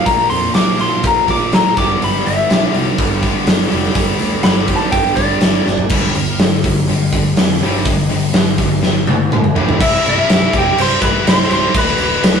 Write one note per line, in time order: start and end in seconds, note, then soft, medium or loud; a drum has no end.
0.00 0.54 A#2 loud
0.00 0.54 F3 medium
0.00 0.55 A#3 medium
0.00 0.58 D4 loud
0.00 0.55 F4 medium
0.00 0.55 A#4 medium
0.06 0.22 A#1 loud
0.06 0.29 A#5 medium
0.06 kick loud
0.06 open hi-hat medium
0.30 0.47 F2 medium
0.30 0.54 C6 loud
0.30 open hi-hat medium
0.54 0.86 A#1 medium
0.54 1.27 A#2 medium
0.54 1.28 F3 medium
0.54 1.28 A#3 medium
0.54 0.80 D6 loud
0.54 snare loud
0.54 open hi-hat medium
0.58 1.28 D4 medium
0.58 1.27 F4 medium
0.58 1.26 A#4 medium
0.78 1.76 A#2 medium
0.78 1.76 F3 medium
0.78 1.75 A#3 medium
0.78 1.05 C6 medium
0.78 open hi-hat medium
1.03 1.19 A#1 medium
1.03 1.30 A#5 medium
1.03 kick loud
1.03 open hi-hat medium
1.27 1.43 A#1 medium
1.27 1.77 A#2 medium
1.27 1.77 F3 medium
1.27 1.76 A#3 medium
1.27 1.79 D4 medium
1.27 1.76 F4 medium
1.27 1.75 A#4 medium
1.27 1.54 D6 medium
1.27 kick medium
1.27 open hi-hat medium
1.52 1.68 A1 medium
1.52 1.78 A#5 loud
1.52 snare loud
1.52 open hi-hat medium
1.77 1.93 G1 medium
1.77 2.49 G2 medium
1.77 2.48 D3 medium
1.77 2.50 G3 loud
1.77 2.50 B3 medium
1.77 2.51 D4 loud
1.77 2.51 G4 loud
1.77 2.01 D6 medium
1.77 kick loud
1.77 open hi-hat medium
2.02 2.17 G1 loud
2.02 2.28 B5 loud
2.02 open hi-hat medium
2.15 snare soft
2.26 2.41 G1 medium
2.26 2.72 E5 medium
2.26 open hi-hat medium
2.49 2.66 B1 medium
2.49 3.24 G2 medium
2.49 3.22 D3 medium
2.49 3.23 G3 medium
2.49 3.23 B3 medium
2.49 3.22 D4 medium
2.49 3.22 G4 loud
2.49 snare loud
2.49 open hi-hat medium
2.73 2.90 C2 medium
2.73 3.69 G2 medium
2.73 3.69 D3 medium
2.73 3.71 G3 medium
2.73 open hi-hat medium
2.98 3.29 G1 medium
2.98 kick loud
2.98 open hi-hat medium
3.22 3.70 G2 medium
3.22 3.70 D3 medium
3.22 3.72 G3 medium
3.22 3.72 B3 medium
3.22 3.72 D4 medium
3.22 3.72 G4 medium
3.22 kick medium
3.22 open hi-hat medium
3.47 3.63 G1 medium
3.47 snare loud
3.47 open hi-hat medium
3.71 3.87 F1 medium
3.71 4.42 G2 medium
3.71 4.42 D3 medium
3.71 4.44 G3 loud
3.71 4.44 B3 loud
3.71 4.44 D4 medium
3.71 4.44 G4 medium
3.71 open hi-hat medium
3.84 snare soft
3.95 4.11 G1 loud
3.95 kick loud
3.95 open hi-hat medium
4.19 4.35 D2 medium
4.19 open hi-hat medium
4.43 4.74 G1 medium
4.43 5.16 G2 medium
4.43 5.16 D3 medium
4.43 5.17 G3 medium
4.43 5.17 B3 medium
4.43 5.17 D4 medium
4.43 5.16 G4 medium
4.43 4.78 B5 loud
4.43 snare loud
4.43 open hi-hat medium
4.67 5.65 G2 medium
4.67 5.65 D3 medium
4.67 5.64 G3 medium
4.67 kick medium
4.67 open hi-hat medium
4.76 4.91 A5 medium
4.92 5.08 G1 medium
4.92 5.15 G5 medium
4.92 kick loud
4.92 open hi-hat medium
5.16 5.32 G1 medium
5.16 5.66 G3 medium
5.16 5.66 B3 medium
5.16 5.66 D4 medium
5.16 5.65 G4 medium
5.16 5.86 D5 medium
5.16 kick medium
5.16 open hi-hat medium
5.20 5.66 G2 medium
5.20 5.66 D3 medium
5.41 5.58 G1 medium
5.41 snare loud
5.41 open hi-hat medium
5.66 5.90 G1 loud
5.66 snare medium
5.78 floor tom medium
5.89 6.13 G1 medium
5.89 6.15 G2 medium
5.89 6.15 D3 medium
5.89 6.15 G3 loud
5.89 kick loud
5.89 crash loud
6.03 snare soft
6.15 6.38 G1 medium
6.15 6.38 G2 medium
6.15 6.38 D3 medium
6.15 open hi-hat medium
6.39 6.63 G1 loud
6.39 6.62 G2 medium
6.39 6.62 D3 loud
6.39 snare loud
6.39 open hi-hat medium
6.64 6.87 G1 medium
6.64 6.87 G2 medium
6.64 6.87 D3 medium
6.64 kick medium
6.64 open hi-hat medium
6.88 7.11 G1 medium
6.88 7.11 G2 medium
6.88 7.11 D3 medium
6.88 open hi-hat medium
7.12 7.36 G1 medium
7.12 7.36 G2 medium
7.12 7.36 D3 medium
7.12 kick medium
7.12 open hi-hat medium
7.37 7.61 F2 medium
7.37 7.60 G2 medium
7.37 7.60 D3 medium
7.37 snare loud
7.37 open hi-hat loud
7.61 7.85 G1 medium
7.61 7.85 G2 medium
7.61 7.86 D3 loud
7.61 7.86 G3 loud
7.61 open hi-hat medium
7.85 8.09 G1 loud
7.85 8.08 G2 medium
7.85 8.08 D3 loud
7.85 kick loud
7.85 open hi-hat medium
8.09 8.34 G1 medium
8.09 8.32 G2 medium
8.09 8.32 D3 medium
8.09 open hi-hat medium
8.33 8.58 G1 medium
8.33 8.56 G2 medium
8.33 8.56 D3 medium
8.33 snare loud
8.33 open hi-hat medium
8.58 8.82 G1 medium
8.58 8.81 G2 medium
8.58 8.81 D3 medium
8.58 kick medium
8.58 open hi-hat medium
8.83 9.30 G1 medium
8.83 9.05 G2 medium
8.83 9.05 D3 medium
8.83 snare medium
9.07 9.30 G2 medium
9.07 9.30 D3 medium
9.07 high tom medium
9.32 9.56 G1 loud
9.32 9.54 G2 medium
9.32 9.55 D3 medium
9.32 mid tom medium
9.44 mid tom medium
9.56 9.80 G1 medium
9.56 9.78 G2 loud
9.56 9.79 D3 loud
9.56 9.79 G3 loud
9.56 floor tom loud
9.69 floor tom loud
9.79 9.97 C1 loud
9.79 10.26 C2 loud
9.79 10.27 G2 medium
9.79 10.06 C3 loud
9.79 10.05 G3 loud
9.79 10.05 E4 loud
9.79 10.04 E4 medium
9.79 10.04 E5 loud
9.79 kick loud
9.79 crash loud
10.05 10.22 C1 medium
10.05 10.27 C3 medium
10.05 10.28 G3 medium
10.05 10.30 E4 medium
10.05 10.51 E4 medium
10.05 crash medium
10.09 10.57 E5 loud
10.27 10.46 C1 medium
10.27 10.77 C2 loud
10.27 10.75 G2 loud
10.27 10.53 C3 loud
10.27 10.51 G3 loud
10.27 10.51 E4 loud
10.27 snare loud
10.27 crash medium
10.51 10.70 F1 medium
10.51 10.76 C3 medium
10.51 10.77 G3 medium
10.51 10.78 E4 medium
10.51 kick loud
10.51 crash medium
10.56 10.78 G4 medium
10.56 10.81 G5 medium
10.76 10.94 C1 medium
10.76 11.00 G2 medium
10.76 11.00 C3 medium
10.76 11.00 G3 medium
10.76 11.00 E4 medium
10.76 crash loud
10.80 11.01 C5 medium
10.80 11.04 C6 loud
11.00 11.18 C1 medium
11.00 11.51 C2 medium
11.00 11.24 G2 medium
11.00 11.25 C3 medium
11.00 11.25 G3 loud
11.00 11.27 E4 loud
11.00 11.25 B4 medium
11.00 kick loud
11.00 crash medium
11.04 11.28 B5 loud
11.25 11.43 C1 loud
11.25 11.73 G2 medium
11.25 11.49 C3 medium
11.25 11.49 G3 medium
11.25 11.48 E4 medium
11.25 11.49 C5 medium
11.25 snare loud
11.25 crash loud
11.29 11.52 C6 loud
11.48 11.67 C#1 medium
11.48 11.74 C3 medium
11.48 11.73 G3 medium
11.48 11.75 E4 medium
11.48 11.73 C5 medium
11.48 crash medium
11.53 11.77 C6 loud
11.73 11.91 D1 loud
11.73 12.22 D2 loud
11.73 12.22 A2 loud
11.73 11.99 D3 loud
11.73 11.99 F3 loud
11.73 11.98 A3 loud
11.73 11.97 D4 loud
11.73 12.40 B4 medium
11.73 kick loud
11.73 crash loud
11.79 12.40 B5 loud
11.98 12.16 D1 medium
11.98 12.23 D3 medium
11.98 12.24 F3 medium
11.98 12.24 A3 medium
11.98 12.24 D4 medium
11.98 crash medium
12.23 12.40 D1 loud
12.23 12.40 D2 loud
12.23 12.40 A2 loud
12.23 12.40 D3 loud
12.23 12.40 F3 loud
12.23 12.40 A3 loud
12.23 12.40 D4 loud
12.23 snare loud
12.23 crash loud